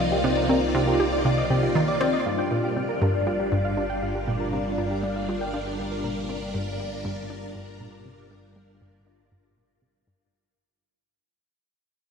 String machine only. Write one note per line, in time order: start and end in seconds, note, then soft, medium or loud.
0.00 3.42 A#3 medium
0.00 2.26 D#4 medium
0.00 10.32 F4 medium
0.00 2.88 C5 medium
0.00 10.32 D5 medium
2.26 10.33 G3 medium
2.33 10.33 D4 medium
4.06 10.33 A#4 medium